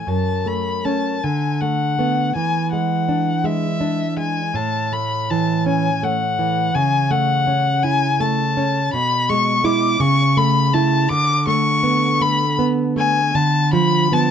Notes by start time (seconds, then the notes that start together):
0.07 F#2 A5
0.46 A3 B5
0.85 A3 C#4 A5
1.23 D3 G#5
1.61 A3 F#5
1.99 A3 B3
2.35 E3 G#5
2.72 G#3 F#5
3.09 D4
3.44 G#3 E5
3.81 D4
4.17 G#3 G#5
4.54 A2 A5
4.92 A3 B5
5.30 E3 A5
5.66 C#4 G#5
6.03 A3 F#5
6.39 E3
6.74 C#3 G#5
7.11 A3 F#5
7.47 C#4
7.83 E4 G#5
8.20 A3 A5
8.57 C#4
8.93 B2 B5
9.29 G#3 C#6
9.64 G#3 E4 D6
10.00 C#3 C#6
10.37 A3 B5
10.73 A3 E4 A5
11.09 D3 D6
11.47 A3 C#6
11.83 B3
12.21 A3 B5
12.59 B3
12.96 A3 G#5
13.35 D3 A5
13.73 F3 B5
14.12 F3 B3 A5